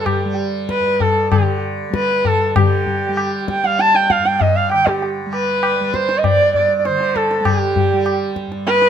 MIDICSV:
0, 0, Header, 1, 4, 480
1, 0, Start_track
1, 0, Key_signature, 1, "major"
1, 0, Tempo, 621118
1, 46, Time_signature, 4, 2, 24, 8
1, 3406, Tempo, 608519
1, 6944, End_track
2, 0, Start_track
2, 0, Title_t, "Sarangi"
2, 0, Program_c, 0, 110
2, 5, Note_on_c, 0, 69, 58
2, 40, Note_on_c, 0, 67, 75
2, 51, Note_off_c, 0, 69, 0
2, 285, Note_off_c, 0, 67, 0
2, 546, Note_on_c, 0, 71, 97
2, 782, Note_on_c, 0, 69, 94
2, 793, Note_off_c, 0, 71, 0
2, 1009, Note_off_c, 0, 69, 0
2, 1014, Note_on_c, 0, 67, 73
2, 1238, Note_off_c, 0, 67, 0
2, 1509, Note_on_c, 0, 71, 99
2, 1746, Note_on_c, 0, 69, 98
2, 1758, Note_off_c, 0, 71, 0
2, 1976, Note_off_c, 0, 69, 0
2, 1981, Note_on_c, 0, 67, 90
2, 2664, Note_off_c, 0, 67, 0
2, 2710, Note_on_c, 0, 79, 91
2, 2821, Note_on_c, 0, 77, 93
2, 2833, Note_off_c, 0, 79, 0
2, 2937, Note_on_c, 0, 81, 112
2, 2949, Note_off_c, 0, 77, 0
2, 3056, Note_on_c, 0, 79, 102
2, 3068, Note_off_c, 0, 81, 0
2, 3172, Note_on_c, 0, 77, 96
2, 3183, Note_off_c, 0, 79, 0
2, 3293, Note_on_c, 0, 79, 95
2, 3304, Note_off_c, 0, 77, 0
2, 3407, Note_on_c, 0, 75, 94
2, 3418, Note_off_c, 0, 79, 0
2, 3526, Note_on_c, 0, 77, 90
2, 3538, Note_off_c, 0, 75, 0
2, 3648, Note_off_c, 0, 77, 0
2, 3653, Note_on_c, 0, 79, 102
2, 3772, Note_on_c, 0, 67, 69
2, 3784, Note_off_c, 0, 79, 0
2, 3892, Note_off_c, 0, 67, 0
2, 4147, Note_on_c, 0, 71, 101
2, 4620, Note_on_c, 0, 72, 101
2, 4632, Note_off_c, 0, 71, 0
2, 4804, Note_on_c, 0, 75, 73
2, 4816, Note_off_c, 0, 72, 0
2, 4858, Note_on_c, 0, 74, 118
2, 4870, Note_off_c, 0, 75, 0
2, 5097, Note_off_c, 0, 74, 0
2, 5104, Note_on_c, 0, 74, 100
2, 5289, Note_off_c, 0, 74, 0
2, 5289, Note_on_c, 0, 74, 76
2, 5334, Note_on_c, 0, 72, 107
2, 5346, Note_off_c, 0, 74, 0
2, 5572, Note_on_c, 0, 69, 91
2, 5584, Note_off_c, 0, 72, 0
2, 5811, Note_on_c, 0, 67, 96
2, 5823, Note_off_c, 0, 69, 0
2, 6528, Note_off_c, 0, 67, 0
2, 6766, Note_on_c, 0, 71, 127
2, 6944, Note_off_c, 0, 71, 0
2, 6944, End_track
3, 0, Start_track
3, 0, Title_t, "Tanpura"
3, 0, Program_c, 1, 104
3, 0, Note_on_c, 1, 43, 61
3, 0, Note_on_c, 1, 50, 66
3, 0, Note_on_c, 1, 55, 66
3, 194, Note_off_c, 1, 55, 0
3, 194, Note_on_c, 1, 55, 61
3, 609, Note_off_c, 1, 43, 0
3, 612, Note_on_c, 1, 43, 58
3, 1035, Note_off_c, 1, 50, 0
3, 1038, Note_on_c, 1, 50, 62
3, 1468, Note_off_c, 1, 55, 0
3, 1468, Note_on_c, 1, 55, 54
3, 1969, Note_off_c, 1, 50, 0
3, 1969, Note_on_c, 1, 50, 62
3, 2384, Note_off_c, 1, 55, 0
3, 2384, Note_on_c, 1, 55, 63
3, 2810, Note_off_c, 1, 55, 0
3, 2810, Note_on_c, 1, 55, 64
3, 3229, Note_off_c, 1, 43, 0
3, 3232, Note_on_c, 1, 43, 67
3, 3656, Note_off_c, 1, 50, 0
3, 3656, Note_on_c, 1, 50, 63
3, 4075, Note_off_c, 1, 55, 0
3, 4078, Note_on_c, 1, 55, 71
3, 4508, Note_off_c, 1, 55, 0
3, 4508, Note_on_c, 1, 55, 65
3, 4926, Note_off_c, 1, 43, 0
3, 4929, Note_on_c, 1, 43, 68
3, 5345, Note_off_c, 1, 50, 0
3, 5348, Note_on_c, 1, 50, 67
3, 5770, Note_off_c, 1, 55, 0
3, 5770, Note_on_c, 1, 55, 70
3, 6185, Note_off_c, 1, 55, 0
3, 6185, Note_on_c, 1, 55, 64
3, 6608, Note_off_c, 1, 43, 0
3, 6612, Note_on_c, 1, 43, 63
3, 6944, Note_off_c, 1, 43, 0
3, 6944, Note_off_c, 1, 50, 0
3, 6944, Note_off_c, 1, 55, 0
3, 6944, End_track
4, 0, Start_track
4, 0, Title_t, "Tabla"
4, 47, Note_on_c, 9, 60, 97
4, 47, Note_on_c, 9, 64, 80
4, 124, Note_off_c, 9, 60, 0
4, 124, Note_off_c, 9, 64, 0
4, 532, Note_on_c, 9, 37, 74
4, 610, Note_off_c, 9, 37, 0
4, 775, Note_on_c, 9, 63, 74
4, 775, Note_on_c, 9, 64, 66
4, 852, Note_off_c, 9, 63, 0
4, 852, Note_off_c, 9, 64, 0
4, 1017, Note_on_c, 9, 60, 92
4, 1017, Note_on_c, 9, 64, 86
4, 1095, Note_off_c, 9, 60, 0
4, 1095, Note_off_c, 9, 64, 0
4, 1496, Note_on_c, 9, 37, 82
4, 1573, Note_off_c, 9, 37, 0
4, 1737, Note_on_c, 9, 63, 75
4, 1737, Note_on_c, 9, 64, 65
4, 1815, Note_off_c, 9, 63, 0
4, 1815, Note_off_c, 9, 64, 0
4, 1977, Note_on_c, 9, 60, 117
4, 1977, Note_on_c, 9, 64, 98
4, 2054, Note_off_c, 9, 60, 0
4, 2054, Note_off_c, 9, 64, 0
4, 2215, Note_on_c, 9, 64, 80
4, 2293, Note_off_c, 9, 64, 0
4, 2452, Note_on_c, 9, 60, 81
4, 2529, Note_off_c, 9, 60, 0
4, 2691, Note_on_c, 9, 37, 68
4, 2768, Note_off_c, 9, 37, 0
4, 2812, Note_on_c, 9, 62, 70
4, 2890, Note_off_c, 9, 62, 0
4, 2930, Note_on_c, 9, 62, 81
4, 3008, Note_off_c, 9, 62, 0
4, 3049, Note_on_c, 9, 62, 71
4, 3127, Note_off_c, 9, 62, 0
4, 3169, Note_on_c, 9, 37, 67
4, 3246, Note_off_c, 9, 37, 0
4, 3287, Note_on_c, 9, 62, 69
4, 3364, Note_off_c, 9, 62, 0
4, 3406, Note_on_c, 9, 63, 82
4, 3406, Note_on_c, 9, 64, 78
4, 3485, Note_off_c, 9, 63, 0
4, 3485, Note_off_c, 9, 64, 0
4, 3649, Note_on_c, 9, 60, 65
4, 3728, Note_off_c, 9, 60, 0
4, 3770, Note_on_c, 9, 37, 66
4, 3849, Note_off_c, 9, 37, 0
4, 3892, Note_on_c, 9, 63, 87
4, 3971, Note_off_c, 9, 63, 0
4, 4132, Note_on_c, 9, 60, 65
4, 4211, Note_off_c, 9, 60, 0
4, 4370, Note_on_c, 9, 60, 88
4, 4449, Note_off_c, 9, 60, 0
4, 4614, Note_on_c, 9, 37, 68
4, 4693, Note_off_c, 9, 37, 0
4, 4732, Note_on_c, 9, 62, 78
4, 4811, Note_off_c, 9, 62, 0
4, 4851, Note_on_c, 9, 60, 83
4, 4851, Note_on_c, 9, 64, 77
4, 4930, Note_off_c, 9, 60, 0
4, 4930, Note_off_c, 9, 64, 0
4, 5093, Note_on_c, 9, 64, 57
4, 5172, Note_off_c, 9, 64, 0
4, 5335, Note_on_c, 9, 62, 89
4, 5414, Note_off_c, 9, 62, 0
4, 5455, Note_on_c, 9, 62, 65
4, 5534, Note_off_c, 9, 62, 0
4, 5575, Note_on_c, 9, 37, 59
4, 5654, Note_off_c, 9, 37, 0
4, 5694, Note_on_c, 9, 62, 78
4, 5773, Note_off_c, 9, 62, 0
4, 5809, Note_on_c, 9, 60, 107
4, 5809, Note_on_c, 9, 64, 107
4, 5888, Note_off_c, 9, 60, 0
4, 5888, Note_off_c, 9, 64, 0
4, 6051, Note_on_c, 9, 64, 76
4, 6130, Note_off_c, 9, 64, 0
4, 6287, Note_on_c, 9, 60, 87
4, 6365, Note_off_c, 9, 60, 0
4, 6525, Note_on_c, 9, 37, 67
4, 6604, Note_off_c, 9, 37, 0
4, 6648, Note_on_c, 9, 62, 70
4, 6727, Note_off_c, 9, 62, 0
4, 6770, Note_on_c, 9, 62, 90
4, 6849, Note_off_c, 9, 62, 0
4, 6885, Note_on_c, 9, 62, 65
4, 6944, Note_off_c, 9, 62, 0
4, 6944, End_track
0, 0, End_of_file